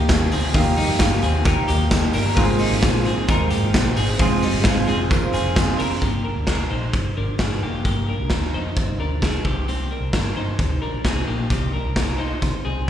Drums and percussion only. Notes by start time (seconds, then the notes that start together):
0.09 kick, snare, hi-hat pedal, open hi-hat, tambourine
0.32 hi-hat pedal, open hi-hat, tambourine
0.54 kick, hi-hat pedal, open hi-hat, tambourine
0.77 hi-hat pedal, open hi-hat, tambourine
0.99 kick, snare, hi-hat pedal, open hi-hat, tambourine
1.22 hi-hat pedal, open hi-hat, tambourine
1.45 kick, hi-hat pedal, open hi-hat, tambourine
1.68 hi-hat pedal, open hi-hat, tambourine
1.91 kick, snare, hi-hat pedal, open hi-hat, tambourine
2.13 hi-hat pedal, open hi-hat, tambourine
2.36 kick, hi-hat pedal, open hi-hat, tambourine
2.59 hi-hat pedal, open hi-hat, tambourine
2.82 kick, snare, hi-hat pedal, open hi-hat, tambourine
3.05 hi-hat pedal, open hi-hat
3.28 kick, hi-hat pedal, open hi-hat, tambourine
3.50 hi-hat pedal, open hi-hat, tambourine
3.74 kick, snare, hi-hat pedal, open hi-hat, tambourine
3.96 hi-hat pedal, open hi-hat, tambourine
4.19 kick, hi-hat pedal, open hi-hat
4.42 hi-hat pedal, open hi-hat, tambourine
4.64 kick, snare, hi-hat pedal, open hi-hat, tambourine
4.87 hi-hat pedal, open hi-hat
5.10 kick, hi-hat pedal, open hi-hat, tambourine
5.33 hi-hat pedal, open hi-hat, tambourine
5.56 kick, snare, hi-hat pedal, open hi-hat, tambourine
5.79 hi-hat pedal, open hi-hat, tambourine
6.02 kick, closed hi-hat
6.47 kick, snare, closed hi-hat
6.93 kick, closed hi-hat
7.38 kick, snare, closed hi-hat
7.85 kick, closed hi-hat
8.30 kick, snare, closed hi-hat
8.76 kick, closed hi-hat
9.22 kick, snare, closed hi-hat
9.45 kick
9.68 closed hi-hat
10.13 kick, snare, closed hi-hat
10.59 kick, closed hi-hat
11.04 kick, snare, closed hi-hat
11.50 kick, closed hi-hat
11.96 kick, snare, closed hi-hat
12.42 kick, closed hi-hat